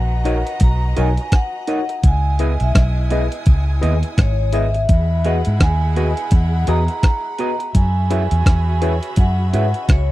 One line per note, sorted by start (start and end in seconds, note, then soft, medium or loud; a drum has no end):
0.00 0.42 A#1 medium
0.00 1.64 D#3 medium
0.00 1.64 B3 medium
0.00 1.64 F#4 medium
0.00 1.99 F#4 medium
0.00 1.99 D#5 medium
0.00 0.58 F#5 medium
0.00 1.99 A#5 loud
0.25 0.36 D#4 medium
0.25 0.40 D#4 loud
0.25 0.36 F#4 medium
0.25 0.41 F#4 medium
0.25 0.40 A#4 medium
0.25 0.37 A#4 loud
0.25 0.41 C#5 loud
0.25 0.37 D#5 loud
0.25 closed hi-hat medium
0.47 closed hi-hat medium
0.60 0.94 B1 loud
0.60 0.79 A#5 loud
0.60 kick loud
0.60 closed hi-hat loud
0.96 1.16 B1 medium
0.96 1.07 D#4 medium
0.96 1.12 D#4 medium
0.96 1.12 F#4 medium
0.96 1.08 F#4 medium
0.96 1.12 A#4 medium
0.96 1.08 A#4 medium
0.96 1.12 C#5 loud
0.96 1.08 D#5 medium
0.96 1.35 G#5 medium
0.96 closed hi-hat medium
1.17 closed hi-hat soft
1.32 1.70 F#5 loud
1.32 kick loud
1.32 cross-stick loud
1.32 closed hi-hat medium
1.67 1.79 D#4 medium
1.67 1.83 D#4 medium
1.67 1.79 F#4 medium
1.67 1.83 F#4 medium
1.67 1.83 A#4 medium
1.67 1.79 A#4 medium
1.67 1.83 C#5 medium
1.67 1.79 D#5 medium
1.67 2.06 F#5 medium
1.67 closed hi-hat medium
1.89 muted clean electric guitar stroke soft
1.89 closed hi-hat soft
2.03 2.56 C#2 loud
2.03 4.50 B2 medium
2.03 4.50 G#3 medium
2.03 4.85 E4 medium
2.03 4.50 E4 medium
2.03 4.85 G#5 loud
2.03 4.85 D#6 medium
2.03 kick loud
2.03 closed hi-hat loud
2.07 2.63 G#5 loud
2.39 2.51 B3 medium
2.39 2.54 E4 medium
2.39 2.51 E4 medium
2.39 2.55 G#4 medium
2.39 2.51 G#4 medium
2.39 2.54 B4 medium
2.39 2.55 D#5 loud
2.39 2.51 D#5 loud
2.39 closed hi-hat medium
2.60 2.74 B1 medium
2.60 2.77 E5 medium
2.60 closed hi-hat medium
2.75 3.27 B1 loud
2.75 3.43 D#5 medium
2.75 kick loud
2.75 cross-stick loud
2.75 closed hi-hat medium
3.10 3.22 B3 medium
3.10 3.26 E4 medium
3.10 3.22 E4 medium
3.10 3.26 G#4 medium
3.10 3.22 G#4 medium
3.10 3.26 B4 medium
3.10 3.22 D#5 medium
3.10 3.26 D#5 loud
3.10 closed hi-hat medium
3.32 closed hi-hat medium
3.46 3.80 C#2 loud
3.46 kick loud
3.46 closed hi-hat medium
3.81 4.02 D#2 loud
3.81 3.93 B3 medium
3.81 3.97 E4 medium
3.81 3.94 E4 medium
3.81 3.97 G#4 medium
3.81 3.94 G#4 medium
3.81 3.97 B4 medium
3.81 3.97 D#5 loud
3.81 3.94 D#5 loud
3.81 closed hi-hat medium
4.03 4.09 B4 soft
4.03 4.09 D#5 soft
4.03 closed hi-hat medium
4.18 4.85 G#1 medium
4.18 4.56 C#5 medium
4.18 kick loud
4.18 cross-stick medium
4.18 closed hi-hat medium
4.53 4.64 B3 medium
4.53 4.68 E4 medium
4.53 4.65 E4 medium
4.53 4.68 G#4 medium
4.53 4.65 G#4 medium
4.53 4.69 B4 medium
4.53 4.69 D#5 medium
4.53 4.65 D#5 medium
4.53 5.27 E5 loud
4.53 closed hi-hat medium
4.74 muted clean electric guitar stroke soft
4.74 closed hi-hat soft
4.89 5.42 E2 loud
4.89 7.35 B2 medium
4.89 7.35 G#3 medium
4.89 7.35 E4 medium
4.89 7.70 G#4 medium
4.89 7.71 F#5 medium
4.89 7.70 B5 loud
4.89 kick loud
4.89 closed hi-hat medium
5.25 5.36 B3 medium
5.25 5.36 F#4 medium
5.25 5.40 F#4 medium
5.25 5.36 G#4 medium
5.25 5.40 G#4 medium
5.25 5.40 B4 medium
5.25 5.40 D#5 medium
5.25 5.36 D#5 medium
5.25 5.62 F#5 medium
5.25 closed hi-hat medium
5.45 5.60 G#2 medium
5.45 closed hi-hat medium
5.60 6.13 D#2 loud
5.60 6.28 G#5 loud
5.60 kick loud
5.60 cross-stick loud
5.60 closed hi-hat loud
5.96 6.07 B3 medium
5.96 6.07 F#4 medium
5.96 6.11 F#4 loud
5.96 6.12 G#4 medium
5.96 6.08 G#4 medium
5.96 6.12 B4 medium
5.96 6.08 D#5 medium
5.96 6.12 D#5 loud
5.96 closed hi-hat medium
6.17 6.23 B4 soft
6.17 6.23 D#5 medium
6.17 closed hi-hat medium
6.31 6.65 E2 loud
6.31 6.70 F#5 loud
6.31 kick loud
6.31 closed hi-hat medium
6.67 6.87 E2 medium
6.67 6.78 B3 medium
6.67 6.83 F#4 loud
6.67 6.79 F#4 medium
6.67 6.79 G#4 loud
6.67 6.83 G#4 medium
6.67 6.83 B4 medium
6.67 6.83 D#5 loud
6.67 6.79 D#5 loud
6.67 7.78 A#5 loud
6.67 closed hi-hat medium
6.88 6.95 B4 soft
6.88 6.95 D#5 soft
6.88 closed hi-hat soft
7.03 kick loud
7.03 cross-stick loud
7.03 closed hi-hat medium
7.39 7.50 B3 medium
7.39 7.50 F#4 medium
7.39 7.54 F#4 medium
7.39 7.50 G#4 medium
7.39 7.55 G#4 medium
7.39 7.55 B4 medium
7.39 7.50 D#5 medium
7.39 7.55 D#5 loud
7.39 closed hi-hat medium
7.59 muted clean electric guitar stroke soft
7.59 closed hi-hat soft
7.74 8.27 F#2 loud
7.74 10.12 E3 medium
7.74 10.12 C#4 medium
7.74 10.12 F#4 loud
7.74 10.12 G#4 medium
7.74 10.12 E5 medium
7.74 9.22 G#5 loud
7.74 10.12 B5 loud
7.74 kick loud
7.74 closed hi-hat loud
8.10 8.21 C#4 medium
8.10 8.26 E4 medium
8.10 8.21 F#4 medium
8.10 8.25 G#4 medium
8.10 8.25 B4 medium
8.10 8.22 B4 loud
8.10 8.26 C#5 medium
8.10 8.22 E5 loud
8.10 closed hi-hat medium
8.31 8.45 E2 medium
8.31 closed hi-hat medium
8.46 8.99 E2 medium
8.46 kick loud
8.46 cross-stick loud
8.46 closed hi-hat loud
8.82 8.93 C#4 medium
8.82 8.97 E4 loud
8.82 8.93 F#4 loud
8.82 8.97 G#4 medium
8.82 8.97 B4 medium
8.82 8.93 B4 medium
8.82 8.97 C#5 loud
8.82 8.93 E5 medium
8.82 closed hi-hat medium
9.03 9.09 B4 soft
9.03 9.09 C#5 soft
9.03 closed hi-hat medium
9.16 9.50 F#2 loud
9.16 9.85 F#5 loud
9.16 kick loud
9.16 closed hi-hat medium
9.53 9.72 G#2 medium
9.53 9.64 C#4 medium
9.53 9.68 E4 medium
9.53 9.64 F#4 loud
9.53 9.68 G#4 medium
9.53 9.68 B4 medium
9.53 9.64 B4 medium
9.53 9.69 C#5 medium
9.53 9.65 E5 loud
9.53 closed hi-hat medium
9.74 closed hi-hat soft
9.83 9.89 D#5 medium
9.89 10.12 C#2 loud
9.89 10.12 C#5 medium
9.89 kick loud
9.89 cross-stick loud
9.89 closed hi-hat medium